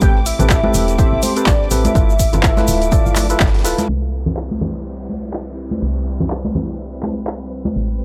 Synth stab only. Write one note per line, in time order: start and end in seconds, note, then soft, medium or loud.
0.01 0.20 C4 medium
0.01 0.20 G4 medium
0.01 0.20 A4 medium
0.01 0.20 B4 loud
0.39 0.60 C4 medium
0.39 0.61 G4 medium
0.39 0.61 A4 medium
0.39 0.61 B4 medium
0.63 0.96 C4 loud
0.63 0.96 G4 medium
0.63 0.96 A4 medium
0.63 0.96 B4 loud
0.98 1.33 C4 loud
0.98 1.33 G4 medium
0.98 1.33 A4 medium
0.98 1.33 C5 loud
1.36 1.68 C4 medium
1.36 1.69 G4 medium
1.36 1.69 A4 medium
1.36 1.69 B4 medium
1.71 1.93 C4 loud
1.71 1.93 G4 medium
1.71 1.93 A4 medium
1.71 1.93 B4 loud
1.95 2.13 E4 loud
1.95 2.13 F4 medium
1.95 2.14 A4 medium
1.95 2.14 B4 loud
2.33 2.54 E4 medium
2.33 2.54 F4 medium
2.33 2.54 A4 medium
2.33 2.54 B4 loud
2.57 2.89 E4 loud
2.57 2.89 F4 medium
2.57 2.90 A4 medium
2.57 2.90 B4 loud
2.91 3.26 E4 loud
2.91 3.27 F4 medium
2.91 3.27 A4 medium
2.91 3.27 D5 loud
3.29 3.62 E4 medium
3.29 3.62 F4 medium
3.29 3.62 A4 medium
3.29 3.62 B4 medium
3.64 3.86 E4 loud
3.64 3.86 F4 medium
3.64 3.86 A4 medium
3.64 3.87 B4 loud